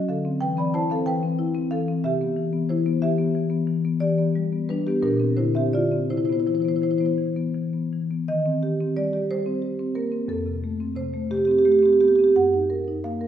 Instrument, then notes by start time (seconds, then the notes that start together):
marimba
0.09 D3 A4 F5
0.25 C4
0.41 E3 B4 G5
0.57 C4 D5 B5
0.74 E4 C5 A5
0.90 C4 A4 F5
1.06 E3 B4 G5
1.23 C4
1.39 E4
1.55 C4
1.71 E3 A4 F5
1.88 C4
2.04 C3 G4 E5
2.21 B3
2.37 E3
2.53 B3
2.69 E3 E4 C5
2.86 B3
3.02 E3 G4 E5
3.18 B3
3.35 E3
3.50 B3
3.67 E3
3.85 B3
4.00 E3 G4 D5
4.18 B3
4.36 G3
4.53 B3
4.69 G3 D4 B4
4.87 B3 G4
5.02 A#2 D4 A#4
5.20 C4
5.37 D3 E4 C5
5.55 C4 G4 E5
5.73 D3 F4 D5
5.92 C4
6.10 C3 E4 C5
6.17 E4 C5
6.25 E4 C5
6.29 B3 E4 C5
6.40 E4 C5
6.47 E3 E4 C5
6.55 E4 C5
6.60 E4 C5
6.65 B3 E4 C5
6.76 E4 C5
6.82 E3 E4 C5
6.91 E4 C5
6.98 B3 E4 C5
7.05 E4 C5
7.18 E3
7.36 B3
7.55 E3
7.73 B3
7.93 E3
8.11 B3
8.28 D#3 D#5
8.46 C4
8.63 G4
8.80 C4
8.97 G3 D5
9.13 G4
9.31 G3 C5
9.46 C4
9.62 G4
9.79 C4
9.95 A#3 A#4
10.12 C4
10.28 F2 A4
10.46 C3
10.64 A3
10.80 C4
10.96 C3 C5
11.14 A3
11.31 C3 G4
11.37 G4
11.45 C4 G4
11.51 G4
11.59 G4
11.65 A3 G4
11.72 G4
11.79 G4
11.83 C4 G4
11.93 G4
12.01 B3 G4
12.08 G4
12.16 C4 G4
12.24 G4
12.36 F#2 F#5
12.54 D#4
12.70 A#4
12.88 D#4
13.04 A#3 F5
13.21 A#4